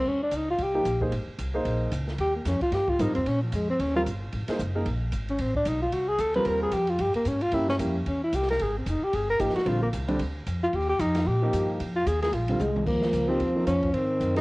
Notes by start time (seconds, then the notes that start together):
0.05 D#2 C#4
0.23 D4
0.31 C#2, kick, hi-hat pedal, ride
0.36 D#4
0.51 F4
0.59 C2, kick, ride
0.63 G4
0.75 F3 A#3 D#4 G4
0.85 A#1, kick, hi-hat pedal, ride
1.01 A#3 D#4 G#4 C5, kick
1.12 G#1, kick, ride
1.27 muted upright bass stroke
1.39 C2, kick, hi-hat pedal, ride
1.54 A#3 D#4 G#4 C5
1.65 A#1, kick, ride
1.92 C#2, kick, hi-hat pedal, ride
2.08 snare
2.18 D#2 G4, kick, ride
2.36 A#3
2.45 F2 C#4, kick, snare, hi-hat pedal, ride
2.61 F4, muted upright bass stroke, kick, ride
2.72 G2 G4, kick, snare, ride
2.88 F4, kick
2.99 G#2 G3 C4 D#4 F4 A#4, hi-hat pedal, ride
3.07 G2
3.15 D#2 C4, ride
3.26 A#2 C#4, kick, ride
3.43 F3
3.52 F2 G#3, kick, hi-hat pedal, ride
3.70 C4
3.79 D#2 C#4, kick, ride
3.96 G3 C4 F4 A#4
4.06 G1, kick, hi-hat pedal, ride
4.32 G#1, kick, ride
4.48 A#3 D#4 G#4 C5, muted upright bass stroke, snare, ride
4.59 F#1, kick, hi-hat pedal
4.75 A#3 D#4 G#4 A#4
4.86 A#1, kick, ride
5.12 G#1, kick, hi-hat pedal, ride
5.28 C#4, ride
5.38 A1 C4, kick, ride
5.55 D4, kick
5.65 B1 D#4, hi-hat pedal, ride
5.82 F4
5.92 C2 F#4, kick, ride
6.08 G#4
6.18 D2 A4, kick, hi-hat pedal, ride
6.34 G3 C4 F4 A#4 B4, ride
6.45 D#2 A#4, kick, ride
6.63 G#4
6.72 F2 G4, kick, hi-hat pedal, ride
6.87 F4, ride
6.99 G2 G4, kick, ride
7.14 A#3, muted upright bass stroke, ride
7.25 G#2 C#4, kick, hi-hat pedal, ride
7.41 F4, ride
7.52 G2 A#3 C#4 E4 G4, kick, ride
7.69 C#4, snare
7.79 F2 A#3 C#4 E4 G4, kick, hi-hat pedal, ride
8.06 E2 C#4, kick, ride
8.24 E4
8.33 C2 G4, kick, hi-hat pedal, ride
8.42 snare
8.49 A#4, snare, ride
8.59 G#1 G#4, kick, ride
8.78 C4
8.86 F1 D#4, kick, hi-hat pedal, ride
9.02 G4, muted upright bass stroke
9.13 G1 G#4, kick, ride
9.30 A#4
9.39 G#1 F3 A#3 D#4 G4, kick, hi-hat pedal, ride
9.49 snare
9.56 F#4, snare, ride
9.66 A#1 D3 G3 C4 F4, kick, ride
9.82 A#3
9.93 C2, kick, hi-hat pedal, ride
10.08 D3 G3 C4 D4, ride
10.19 D2, kick, ride
10.47 F2, kick, hi-hat pedal, ride
10.64 F4
10.73 D#2 G4, kick, ride
10.89 G4
10.99 F2 D#4, kick, hi-hat pedal, ride
11.15 snare, ride
11.26 A#2 G4, kick
11.42 F3 A#3 D#4 G4
11.53 G2, kick, hi-hat pedal, ride
11.80 F2, kick, ride
11.96 F4
12.06 D#2 G#4, kick, hi-hat pedal, ride
12.22 G#4, snare, ride
12.33 A#1 F4, kick, ride
12.48 D3 G3 C4 F4, ride
12.59 C2 G#3, hi-hat pedal, high tom
12.76 mid tom
12.86 D#2 F3 A#3, kick, crash
13.02 snare
13.13 C#2, kick, hi-hat pedal, ride
13.29 F3 A#3 C4 D#4 G4
13.40 D#2, kick, ride
13.55 F3 A#3 D#4 A#4
13.67 F2 C#4, kick, hi-hat pedal, ride
13.83 kick, ride
13.93 G#2 D#3 C4, ride
14.20 F#2, kick, hi-hat pedal, ride
14.36 A#3 D#4 G#4 C5, snare, ride